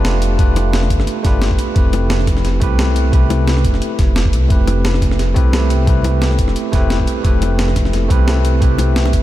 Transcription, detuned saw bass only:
0.00 0.92 F1 medium
0.90 1.06 G1 medium
1.25 1.58 G1 medium
1.76 2.26 F1 loud
2.27 2.43 F1 medium
2.45 2.60 F1 medium
2.62 3.66 C2 medium
3.64 3.80 F1 medium
3.99 4.35 F1 medium
4.33 4.49 C2 medium
4.50 5.01 F1 loud
5.02 5.17 F1 loud
5.19 5.35 F1 medium
5.36 6.40 C2 medium
6.39 6.55 F1 medium
6.73 7.06 F1 medium
7.25 7.75 F1 loud
7.76 7.92 F1 loud
7.93 8.09 F1 medium
8.10 9.15 C2 medium
9.13 9.23 F1 loud

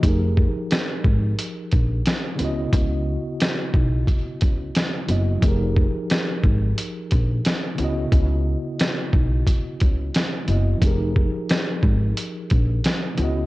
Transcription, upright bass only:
0.03 0.45 F1 loud
1.04 1.31 G#1 medium
1.73 1.99 A#1 medium
2.39 2.66 C#2 medium
2.73 3.15 C#2 loud
3.74 4.01 B1 medium
4.42 4.69 C#2 medium
5.09 5.36 F#1 medium
5.42 5.84 F1 loud
6.44 6.71 G#1 medium
7.12 7.39 A#1 medium
7.78 8.05 C#2 loud
8.12 8.54 C#2 loud
9.13 9.40 B1 medium
9.82 10.08 C#2 medium
10.48 10.75 F#1 medium
10.82 11.24 F1 loud
11.83 12.10 G#1 medium
12.51 12.78 A#1 medium
13.18 13.45 C#2 loud

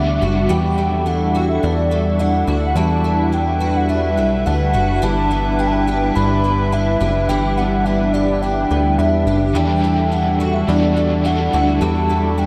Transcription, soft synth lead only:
0.00 0.46 E5 loud
0.50 1.08 G5 loud
1.07 1.50 F#5 loud
1.49 1.65 E5 medium
1.64 2.22 D5 loud
2.20 2.76 F#5 loud
2.76 3.35 A5 loud
3.33 3.78 G5 loud
3.76 3.91 F#5 medium
3.90 4.47 E5 loud
4.46 5.04 F#5 loud
5.03 5.61 A5 loud
5.59 5.69 G5 loud
5.67 5.74 A5 medium
5.73 6.15 G5 loud
6.15 6.74 B5 loud
6.73 7.30 E5 loud
7.29 7.57 G5 loud
7.57 7.86 F#5 loud
7.85 8.15 E5 medium
8.13 8.43 D5 loud
8.42 9.00 G5 loud
8.98 9.55 E5 loud
9.56 10.14 G5 loud
10.12 10.55 F#5 loud
10.54 10.70 E5 medium
10.69 11.27 D5 loud
11.26 11.80 F#5 loud
11.81 12.40 A5 loud
12.38 12.46 G5 loud

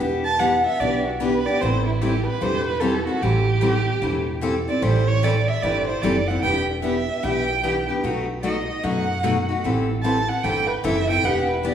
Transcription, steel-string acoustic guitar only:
0.00 0.22 E3 medium
0.00 0.22 B3 medium
0.00 0.22 D4 medium
0.00 0.22 G4 medium
0.40 0.51 E3 medium
0.40 0.51 B3 medium
0.40 0.52 D4 medium
0.40 0.52 G4 loud
0.81 1.02 E3 medium
0.81 1.02 B3 medium
0.81 1.03 D4 medium
0.81 1.03 G4 medium
1.20 1.32 E3 medium
1.20 1.32 B3 medium
1.20 1.32 D4 medium
1.20 1.33 G4 medium
1.47 1.61 B3 soft
1.47 1.61 D4 medium
1.47 1.60 G4 medium
1.62 1.83 E3 medium
1.62 1.83 G3 medium
1.62 1.83 C4 medium
1.62 1.83 E4 medium
1.62 1.83 A4 medium
2.01 2.13 E3 medium
2.01 2.13 G3 medium
2.01 2.13 C4 medium
2.01 2.13 E4 medium
2.01 2.13 A4 medium
2.41 2.63 E3 medium
2.41 2.63 G3 medium
2.41 2.63 C4 medium
2.41 2.63 E4 medium
2.41 2.63 A4 medium
2.81 2.92 E3 medium
2.81 2.93 G3 loud
2.81 2.93 C4 medium
2.81 2.93 E4 medium
2.81 2.93 A4 medium
3.07 3.22 C4 soft
3.07 3.21 E4 soft
3.07 3.21 A4 medium
3.22 3.44 E3 medium
3.22 3.44 G3 medium
3.22 3.44 C4 medium
3.22 3.44 E4 medium
3.22 3.44 A4 medium
3.61 3.73 E3 medium
3.61 3.73 G3 medium
3.61 3.73 C4 medium
3.61 3.73 E4 medium
3.61 3.73 A4 medium
4.02 4.24 E3 medium
4.02 4.24 G3 medium
4.02 4.24 C4 medium
4.02 4.24 E4 medium
4.02 4.24 A4 medium
4.41 4.53 E3 medium
4.41 4.54 G3 medium
4.41 4.54 C4 medium
4.41 4.54 E4 medium
4.41 4.54 A4 loud
4.68 4.81 C4 soft
4.68 4.82 E4 medium
4.68 4.82 A4 medium
4.82 5.04 E3 medium
4.82 5.04 G3 medium
4.82 5.04 C4 medium
4.82 5.04 E4 medium
4.82 5.05 A4 medium
5.23 5.34 E3 medium
5.23 5.34 G3 medium
5.23 5.34 C4 medium
5.23 5.35 E4 medium
5.23 5.35 A4 loud
5.63 5.85 E3 medium
5.63 5.85 G3 medium
5.63 5.85 C4 medium
5.63 5.85 E4 medium
5.63 5.85 A4 medium
6.03 6.14 E3 medium
6.03 6.15 G3 medium
6.03 6.15 C4 medium
6.03 6.15 E4 medium
6.03 6.15 A4 medium
6.29 6.43 C4 soft
6.29 6.43 E4 medium
6.29 6.43 A4 medium
6.43 6.65 E3 medium
6.43 6.65 B3 medium
6.43 6.65 D4 medium
6.43 6.65 G4 medium
6.82 6.94 E3 medium
6.82 6.95 B3 medium
6.82 6.95 D4 medium
6.82 6.95 G4 medium
7.23 7.45 E3 medium
7.23 7.45 B3 medium
7.23 7.45 D4 medium
7.23 7.45 G4 medium
7.63 7.75 E3 medium
7.63 7.75 B3 medium
7.63 7.75 D4 loud
7.63 7.76 G4 medium
7.89 8.04 B3 soft
7.89 8.03 D4 medium
7.89 8.03 G4 medium
8.03 8.25 B2 medium
8.03 8.25 F#3 medium
8.03 8.26 A3 medium
8.03 8.26 D#4 medium
8.03 8.26 F#4 medium
8.43 8.55 B2 medium
8.43 8.55 F#3 medium
8.43 8.55 A3 medium
8.43 8.55 D#4 medium
8.43 8.56 F#4 loud
8.83 9.05 B2 medium
8.83 9.05 F#3 medium
8.83 9.06 A3 medium
8.83 9.06 D#4 medium
8.83 9.06 F#4 medium
9.23 9.35 B2 medium
9.23 9.35 F#3 medium
9.23 9.36 A3 medium
9.23 9.36 D#4 loud
9.23 9.36 F#4 loud
9.49 9.64 A3 soft
9.49 9.64 D#4 soft
9.49 9.63 F#4 medium
9.64 9.86 E3 medium
9.64 9.86 G3 medium
9.64 9.86 C4 medium
9.64 9.86 E4 medium
9.64 9.86 A4 medium
10.03 10.15 E3 medium
10.03 10.16 G3 medium
10.03 10.16 C4 medium
10.03 10.16 E4 medium
10.03 10.16 A4 medium
10.44 10.66 E3 medium
10.44 10.66 G3 medium
10.44 10.66 C4 medium
10.44 10.66 E4 medium
10.44 10.66 A4 medium
10.84 10.96 E3 medium
10.84 10.96 G3 medium
10.84 10.96 C4 medium
10.84 10.96 E4 medium
10.84 10.96 A4 loud
11.10 11.23 C4 soft
11.10 11.24 E4 medium
11.10 11.24 A4 medium
11.23 11.46 E3 medium
11.23 11.46 B3 medium
11.23 11.46 D4 medium
11.23 11.46 G4 medium
11.63 11.74 E3 medium
11.63 11.74 B3 medium
11.63 11.74 D4 medium
11.63 11.74 G4 medium

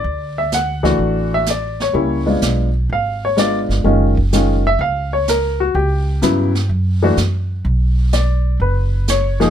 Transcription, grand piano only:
0.00 0.48 D5 medium
0.38 0.52 E5 medium
0.54 1.29 F#5 medium
0.83 1.43 E3 medium
0.83 1.43 A3 medium
0.83 1.44 D4 medium
0.83 1.44 F#4 medium
1.34 1.48 E5 medium
1.50 1.80 D5 medium
1.82 2.39 C#5 medium
1.93 2.23 G3 medium
1.93 2.24 A#3 soft
1.93 2.24 C#4 soft
1.93 2.24 E4 medium
2.26 2.67 G#3 medium
2.26 2.68 B3 soft
2.26 2.68 D4 soft
2.26 2.68 F4 medium
2.93 3.23 F5 medium
3.25 3.38 C#5 medium
3.37 3.83 G#3 medium
3.37 3.84 B3 soft
3.37 3.85 D4 medium
3.37 3.84 F4 medium
3.37 3.58 D5 medium
3.84 4.14 D#3 medium
3.84 4.14 G#3 medium
3.84 4.14 C#4 medium
3.84 4.14 F4 medium
4.33 4.62 D#3 medium
4.33 4.62 G#3 medium
4.33 4.62 C#4 medium
4.33 4.62 F4 medium
4.67 4.80 E5 medium
4.81 5.12 F5 medium
5.13 5.27 C#5 medium
5.29 5.60 A#4 medium
5.60 5.74 F#4 medium
5.75 6.66 G4 medium
6.22 6.51 C#3 medium
6.22 6.52 F#3 medium
6.22 6.52 B3 medium
6.22 6.52 E4 medium
7.03 7.16 E3 medium
7.03 7.16 A3 medium
7.03 7.16 D4 medium
7.03 7.16 F#4 medium
8.13 8.57 D5 medium
8.62 9.05 B4 medium
9.10 9.50 C#5 medium
9.40 9.50 F3 medium
9.40 9.50 A#3 medium
9.40 9.50 D#4 medium
9.40 9.50 G#4 medium

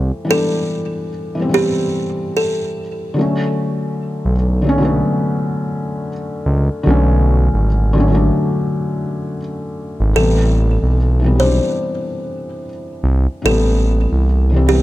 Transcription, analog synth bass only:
0.00 0.12 C2 medium
4.25 5.03 B1 medium
6.45 6.69 C#2 loud
6.87 7.49 B1 loud
7.53 8.31 G#1 medium
10.00 10.14 G#1 medium
10.15 10.78 A1 loud
10.82 11.60 B1 medium
13.03 13.27 C2 loud
13.45 14.07 A1 loud
14.12 14.82 C2 medium

